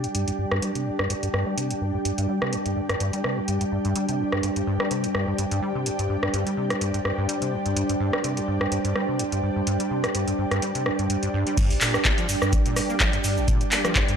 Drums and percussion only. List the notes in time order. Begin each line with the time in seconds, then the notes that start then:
0.04 closed hi-hat
0.15 closed hi-hat
0.28 closed hi-hat
0.52 cross-stick
0.62 closed hi-hat
0.75 closed hi-hat
0.99 cross-stick
1.10 closed hi-hat
1.23 closed hi-hat
1.34 cross-stick
1.58 closed hi-hat
1.71 closed hi-hat
2.05 closed hi-hat
2.18 closed hi-hat
2.42 cross-stick
2.53 closed hi-hat
2.66 closed hi-hat
2.89 cross-stick, closed hi-hat
3.00 closed hi-hat
3.13 closed hi-hat
3.24 cross-stick
3.48 closed hi-hat
3.61 closed hi-hat
3.85 closed hi-hat
3.96 closed hi-hat
4.09 closed hi-hat
4.32 cross-stick
4.43 closed hi-hat
4.56 closed hi-hat
4.80 cross-stick
4.91 closed hi-hat
5.04 closed hi-hat
5.15 cross-stick
5.38 closed hi-hat
5.51 closed hi-hat
5.86 closed hi-hat
5.99 closed hi-hat
6.23 cross-stick
6.34 closed hi-hat
6.47 closed hi-hat
6.70 cross-stick, closed hi-hat
6.81 closed hi-hat
6.94 closed hi-hat
7.05 cross-stick
7.29 closed hi-hat
7.42 closed hi-hat
7.66 closed hi-hat
7.77 closed hi-hat
7.89 closed hi-hat
8.13 cross-stick
8.24 closed hi-hat
8.37 closed hi-hat
8.61 cross-stick
8.72 closed hi-hat
8.85 closed hi-hat
8.96 cross-stick
9.19 closed hi-hat
9.32 closed hi-hat
9.67 closed hi-hat
9.80 closed hi-hat
10.04 cross-stick, closed hi-hat
10.15 closed hi-hat
10.28 closed hi-hat
10.51 cross-stick, closed hi-hat
10.62 closed hi-hat
10.75 closed hi-hat
10.86 cross-stick
10.99 closed hi-hat
11.10 closed hi-hat
11.23 closed hi-hat
11.47 closed hi-hat
11.57 kick, closed hi-hat, crash, shaker
11.70 open hi-hat, shaker
11.81 clap, open hi-hat, shaker
11.94 cross-stick, shaker
12.05 kick, clap, closed hi-hat, shaker
12.18 closed hi-hat, shaker
12.29 open hi-hat, shaker
12.42 cross-stick, shaker
12.53 kick, closed hi-hat, shaker
12.66 closed hi-hat, shaker
12.76 cross-stick, open hi-hat, shaker
12.90 shaker
13.00 kick, clap, closed hi-hat, shaker
13.13 closed hi-hat, shaker
13.24 open hi-hat, shaker
13.37 shaker
13.48 kick, closed hi-hat, shaker
13.61 closed hi-hat, shaker
13.72 clap, open hi-hat, shaker
13.85 cross-stick, closed hi-hat, shaker
13.95 kick, clap, closed hi-hat, shaker
14.08 closed hi-hat, shaker